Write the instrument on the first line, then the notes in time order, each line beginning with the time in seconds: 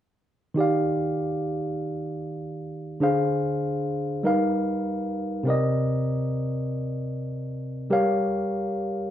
tine electric piano
0.54 D#3 D#4 G4
0.59 D5 F5
3.00 D3 D4 G#4 C5 F5
4.23 G3 D#4 A#4 B4 F5
5.43 C3 C4 A#4
5.48 D5 D#5
7.90 G3 G4 A#4 C#5 F5